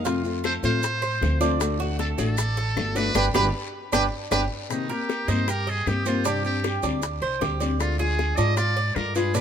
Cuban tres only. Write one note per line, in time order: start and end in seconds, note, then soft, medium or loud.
0.05 0.43 F4 medium
0.44 0.63 A4 medium
0.64 1.01 F5 medium
1.02 1.40 C5 medium
1.41 1.78 D4 medium
1.80 1.98 F#4 medium
1.99 2.18 A4 medium
2.18 2.56 D5 medium
2.57 2.95 A4 medium
2.96 3.15 D5 medium
3.15 3.28 D4 loud
3.15 3.28 G4 medium
3.15 3.28 B4 medium
3.34 3.47 D4 medium
3.34 3.47 G4 medium
3.34 3.47 B4 loud
3.92 4.05 D4 medium
3.92 4.05 G4 medium
3.92 4.05 B4 medium
4.31 4.44 D4 medium
4.31 4.44 G4 loud
4.31 4.44 B4 medium
4.89 5.27 A#4 medium
5.28 5.47 D#4 medium
5.48 5.67 G4 medium
5.67 6.05 D#5 medium
6.06 6.25 C5 medium
6.25 6.63 D4 medium
6.64 6.83 G4 medium
6.83 7.21 D4 medium
7.22 7.41 C5 medium
7.41 7.60 G4 medium
7.60 7.98 D5 medium
7.99 8.37 G#4 medium
8.38 8.57 D4 medium
8.57 8.76 F4 medium
8.77 9.14 D5 medium
9.15 9.34 B4 medium
9.34 9.41 D4 medium